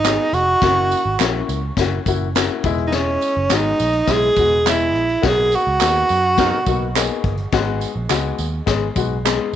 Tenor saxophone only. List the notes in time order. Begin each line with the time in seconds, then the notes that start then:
Already playing: D#4
0.34 F#4
2.87 D#4
2.94 C#4
3.53 D#4
4.12 G#4
4.70 E4
5.27 G#4
5.55 F#4